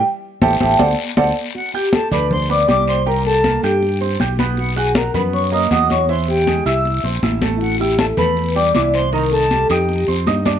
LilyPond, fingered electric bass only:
\new Staff \with { instrumentName = "Fingered electric bass" } { \clef bass \time 4/4 \key g \major \tempo 4 = 158 r4 a,,8 a,,8 d,8 r8 d,8 r8 | r4. d,4. c,4~ | c,4. g,4. b,,4~ | b,,4. fis,4. e,4~ |
e,4. bis,,4 bes,,8 a,,4~ | a,,4. e,4. c,4~ | c,4. f,4 f,8 g,4 | }